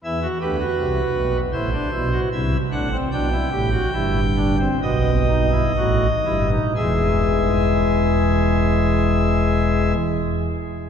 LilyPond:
<<
  \new Staff \with { instrumentName = "Pipe organ" } { \time 4/4 \key b \phrygian \tempo 4 = 66 << { e''8 b'4. c''4 e''8 fis''8 | g''2 dis''2 | <e gis e''>1 | } \\ { e'16 fis'16 g'16 fis'4~ fis'16 e'16 d'16 e'16 fis'16 e'8 d'16 c'16 | d'16 e'16 g'16 fis'16 e'8 d'16 c'16 b8 dis'16 e'16 fis'8 e'16 dis'16 | gis'1 | } >> }
  \new Staff \with { instrumentName = "Pipe organ" } { \clef bass \time 4/4 \key b \phrygian <e, e>8 <d, d>8 <c, c>8 <b,, b,>8 <a,, a,>8 <b,, b,>8 <c, c>8 <a,, a,>8 | <b,, b,>8 <a,, a,>8 <g,, g,>4 <b,, b,>4 <a,, a,>8 <g,, g,>8 | <e,, e,>1 | }
>>